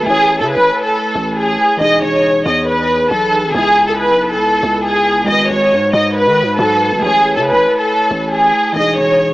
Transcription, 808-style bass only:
0, 0, Header, 1, 2, 480
1, 0, Start_track
1, 0, Tempo, 434783
1, 73, Time_signature, 4, 2, 24, 8
1, 10308, End_track
2, 0, Start_track
2, 0, Title_t, "808-style bass"
2, 0, Program_c, 0, 38
2, 73, Note_on_c, 0, 33, 103
2, 440, Note_on_c, 0, 49, 100
2, 457, Note_off_c, 0, 33, 0
2, 617, Note_on_c, 0, 33, 96
2, 633, Note_off_c, 0, 49, 0
2, 784, Note_off_c, 0, 33, 0
2, 1273, Note_on_c, 0, 33, 106
2, 1734, Note_off_c, 0, 33, 0
2, 1992, Note_on_c, 0, 28, 112
2, 2223, Note_off_c, 0, 28, 0
2, 2233, Note_on_c, 0, 28, 105
2, 2694, Note_off_c, 0, 28, 0
2, 2713, Note_on_c, 0, 40, 108
2, 3404, Note_off_c, 0, 40, 0
2, 3433, Note_on_c, 0, 35, 113
2, 3800, Note_on_c, 0, 32, 102
2, 3816, Note_off_c, 0, 35, 0
2, 3907, Note_off_c, 0, 32, 0
2, 3913, Note_on_c, 0, 37, 106
2, 4521, Note_on_c, 0, 35, 99
2, 4537, Note_off_c, 0, 37, 0
2, 4816, Note_on_c, 0, 37, 101
2, 4832, Note_off_c, 0, 35, 0
2, 5098, Note_off_c, 0, 37, 0
2, 5112, Note_on_c, 0, 37, 107
2, 5804, Note_off_c, 0, 37, 0
2, 5831, Note_on_c, 0, 32, 112
2, 6063, Note_off_c, 0, 32, 0
2, 6071, Note_on_c, 0, 32, 102
2, 6311, Note_on_c, 0, 44, 99
2, 6328, Note_off_c, 0, 32, 0
2, 6540, Note_off_c, 0, 44, 0
2, 6551, Note_on_c, 0, 44, 107
2, 6919, Note_on_c, 0, 51, 101
2, 6935, Note_off_c, 0, 44, 0
2, 7096, Note_on_c, 0, 44, 101
2, 7113, Note_off_c, 0, 51, 0
2, 7264, Note_off_c, 0, 44, 0
2, 7273, Note_on_c, 0, 44, 110
2, 7641, Note_on_c, 0, 30, 105
2, 7657, Note_off_c, 0, 44, 0
2, 7748, Note_off_c, 0, 30, 0
2, 7753, Note_on_c, 0, 33, 104
2, 8121, Note_on_c, 0, 49, 98
2, 8138, Note_off_c, 0, 33, 0
2, 8297, Note_on_c, 0, 33, 101
2, 8314, Note_off_c, 0, 49, 0
2, 8464, Note_off_c, 0, 33, 0
2, 8953, Note_on_c, 0, 33, 109
2, 9414, Note_off_c, 0, 33, 0
2, 9673, Note_on_c, 0, 28, 109
2, 9904, Note_off_c, 0, 28, 0
2, 9912, Note_on_c, 0, 28, 105
2, 10308, Note_off_c, 0, 28, 0
2, 10308, End_track
0, 0, End_of_file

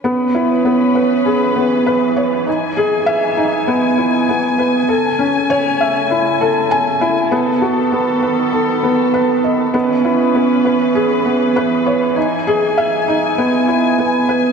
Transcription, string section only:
0, 0, Header, 1, 2, 480
1, 0, Start_track
1, 0, Key_signature, 4, "minor"
1, 0, Tempo, 606061
1, 35, Time_signature, 4, 2, 24, 8
1, 11501, End_track
2, 0, Start_track
2, 0, Title_t, "String section"
2, 0, Program_c, 0, 48
2, 28, Note_on_c, 0, 71, 69
2, 32, Note_on_c, 0, 52, 60
2, 34, Note_on_c, 0, 61, 54
2, 1932, Note_off_c, 0, 71, 0
2, 1935, Note_off_c, 0, 61, 0
2, 1955, Note_on_c, 0, 80, 73
2, 3842, Note_off_c, 0, 52, 0
2, 3878, Note_on_c, 0, 57, 55
2, 3882, Note_on_c, 0, 49, 64
2, 5763, Note_off_c, 0, 80, 0
2, 5777, Note_off_c, 0, 57, 0
2, 5779, Note_off_c, 0, 49, 0
2, 5800, Note_on_c, 0, 59, 62
2, 5801, Note_on_c, 0, 51, 63
2, 5805, Note_on_c, 0, 69, 70
2, 7698, Note_off_c, 0, 59, 0
2, 7699, Note_off_c, 0, 51, 0
2, 7701, Note_off_c, 0, 69, 0
2, 7720, Note_on_c, 0, 71, 73
2, 7721, Note_on_c, 0, 61, 57
2, 7722, Note_on_c, 0, 52, 62
2, 9618, Note_off_c, 0, 71, 0
2, 9619, Note_off_c, 0, 61, 0
2, 9637, Note_on_c, 0, 80, 70
2, 11501, Note_off_c, 0, 52, 0
2, 11501, Note_off_c, 0, 80, 0
2, 11501, End_track
0, 0, End_of_file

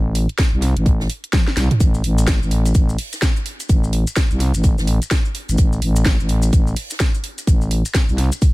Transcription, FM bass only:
0, 0, Header, 1, 2, 480
1, 0, Start_track
1, 0, Key_signature, 0, "minor"
1, 0, Tempo, 472441
1, 1833, Time_signature, 4, 2, 24, 8
1, 8672, End_track
2, 0, Start_track
2, 0, Title_t, "FM bass"
2, 0, Program_c, 0, 39
2, 0, Note_on_c, 0, 33, 96
2, 275, Note_off_c, 0, 33, 0
2, 538, Note_on_c, 0, 36, 97
2, 755, Note_off_c, 0, 36, 0
2, 778, Note_on_c, 0, 33, 94
2, 1098, Note_off_c, 0, 33, 0
2, 1593, Note_on_c, 0, 36, 97
2, 1715, Note_off_c, 0, 36, 0
2, 1832, Note_on_c, 0, 33, 99
2, 2058, Note_off_c, 0, 33, 0
2, 2073, Note_on_c, 0, 33, 99
2, 2435, Note_off_c, 0, 33, 0
2, 2458, Note_on_c, 0, 33, 100
2, 2778, Note_off_c, 0, 33, 0
2, 2792, Note_on_c, 0, 33, 100
2, 3017, Note_off_c, 0, 33, 0
2, 3753, Note_on_c, 0, 33, 94
2, 4115, Note_off_c, 0, 33, 0
2, 4378, Note_on_c, 0, 36, 96
2, 4595, Note_off_c, 0, 36, 0
2, 4618, Note_on_c, 0, 33, 93
2, 4835, Note_off_c, 0, 33, 0
2, 4858, Note_on_c, 0, 33, 98
2, 5075, Note_off_c, 0, 33, 0
2, 5579, Note_on_c, 0, 33, 98
2, 5658, Note_off_c, 0, 33, 0
2, 5672, Note_on_c, 0, 33, 95
2, 5898, Note_off_c, 0, 33, 0
2, 5913, Note_on_c, 0, 33, 98
2, 6275, Note_off_c, 0, 33, 0
2, 6298, Note_on_c, 0, 33, 93
2, 6618, Note_off_c, 0, 33, 0
2, 6633, Note_on_c, 0, 33, 98
2, 6858, Note_off_c, 0, 33, 0
2, 7593, Note_on_c, 0, 33, 94
2, 7955, Note_off_c, 0, 33, 0
2, 8218, Note_on_c, 0, 36, 94
2, 8435, Note_off_c, 0, 36, 0
2, 8672, End_track
0, 0, End_of_file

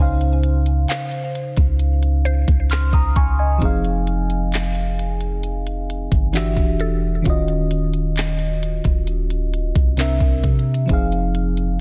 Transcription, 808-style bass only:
0, 0, Header, 1, 2, 480
1, 0, Start_track
1, 0, Tempo, 909091
1, 1911, Time_signature, 4, 2, 24, 8
1, 6234, End_track
2, 0, Start_track
2, 0, Title_t, "808-style bass"
2, 0, Program_c, 0, 38
2, 0, Note_on_c, 0, 37, 109
2, 453, Note_off_c, 0, 37, 0
2, 832, Note_on_c, 0, 37, 106
2, 1293, Note_off_c, 0, 37, 0
2, 1310, Note_on_c, 0, 37, 105
2, 1541, Note_off_c, 0, 37, 0
2, 1548, Note_on_c, 0, 37, 97
2, 1665, Note_off_c, 0, 37, 0
2, 1671, Note_on_c, 0, 37, 105
2, 1902, Note_off_c, 0, 37, 0
2, 1912, Note_on_c, 0, 29, 113
2, 3211, Note_off_c, 0, 29, 0
2, 3231, Note_on_c, 0, 31, 96
2, 3462, Note_off_c, 0, 31, 0
2, 3469, Note_on_c, 0, 28, 101
2, 3816, Note_off_c, 0, 28, 0
2, 3833, Note_on_c, 0, 27, 112
2, 4651, Note_off_c, 0, 27, 0
2, 4674, Note_on_c, 0, 27, 104
2, 5134, Note_off_c, 0, 27, 0
2, 5152, Note_on_c, 0, 36, 102
2, 5382, Note_off_c, 0, 36, 0
2, 5389, Note_on_c, 0, 36, 100
2, 5506, Note_off_c, 0, 36, 0
2, 5513, Note_on_c, 0, 48, 105
2, 5742, Note_off_c, 0, 48, 0
2, 5753, Note_on_c, 0, 29, 107
2, 6234, Note_off_c, 0, 29, 0
2, 6234, End_track
0, 0, End_of_file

